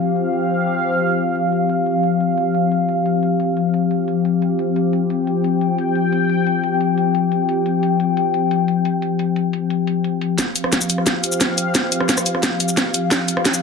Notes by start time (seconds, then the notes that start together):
Already playing: F3 C4 G4 F5
0.16 closed hi-hat
0.33 closed hi-hat
0.50 closed hi-hat
0.67 closed hi-hat
0.84 closed hi-hat
1.01 closed hi-hat
1.18 closed hi-hat
1.35 closed hi-hat
1.52 closed hi-hat
1.69 closed hi-hat
1.86 closed hi-hat
2.03 closed hi-hat
2.20 closed hi-hat
2.38 closed hi-hat
2.55 closed hi-hat
2.72 closed hi-hat
2.89 closed hi-hat
3.06 closed hi-hat
3.23 closed hi-hat
3.40 closed hi-hat
3.57 closed hi-hat
3.74 closed hi-hat
3.91 closed hi-hat
4.08 closed hi-hat
4.25 closed hi-hat
4.42 closed hi-hat
4.59 closed hi-hat
4.76 closed hi-hat
4.93 G5, closed hi-hat
5.10 closed hi-hat
5.27 closed hi-hat
5.44 closed hi-hat
5.61 closed hi-hat
5.78 closed hi-hat
5.95 closed hi-hat
6.12 closed hi-hat
6.29 closed hi-hat
6.47 closed hi-hat
6.64 closed hi-hat
6.81 closed hi-hat
6.98 closed hi-hat
7.15 closed hi-hat
7.32 closed hi-hat
7.49 closed hi-hat
7.66 closed hi-hat
7.83 closed hi-hat
8.00 closed hi-hat
8.17 closed hi-hat
8.34 closed hi-hat
8.51 closed hi-hat
8.68 closed hi-hat
8.85 closed hi-hat
9.02 closed hi-hat
9.19 closed hi-hat
9.36 closed hi-hat
9.53 closed hi-hat
9.70 closed hi-hat
9.87 closed hi-hat
10.04 closed hi-hat
10.21 closed hi-hat
10.38 F3 C4 G4 F5, kick, snare, closed hi-hat, shaker
10.56 closed hi-hat, shaker
10.64 cross-stick
10.73 kick, snare, closed hi-hat, shaker
10.81 shaker
10.90 closed hi-hat, shaker
10.98 cross-stick
11.07 kick, snare, closed hi-hat, shaker
11.24 closed hi-hat, shaker
11.32 shaker
11.41 kick, snare, closed hi-hat, shaker
11.58 closed hi-hat, shaker
11.75 kick, snare, closed hi-hat, shaker
11.92 closed hi-hat, shaker
12.00 cross-stick
12.09 kick, snare, closed hi-hat, shaker
12.17 cross-stick, shaker
12.26 closed hi-hat, shaker
12.35 cross-stick
12.43 kick, snare, closed hi-hat, shaker
12.60 closed hi-hat, shaker
12.69 shaker
12.77 kick, snare, closed hi-hat, shaker
12.94 closed hi-hat, shaker
13.11 kick, snare, closed hi-hat, shaker
13.28 closed hi-hat, shaker
13.37 cross-stick
13.45 kick, snare, closed hi-hat, shaker
13.54 shaker